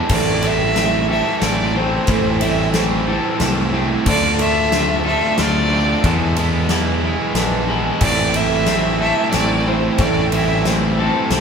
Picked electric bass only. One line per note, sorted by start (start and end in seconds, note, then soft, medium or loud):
0.10 1.20 A1 medium
1.42 1.97 A1 loud
2.08 3.18 A1 loud
3.41 3.96 C2 loud
4.06 5.16 D2 loud
5.39 5.94 D2 loud
6.04 7.14 E2 loud
7.35 7.90 A#1 loud
8.01 9.12 A1 loud
9.34 9.89 A1 loud
9.99 11.09 A1 loud
11.31 11.40 C2 loud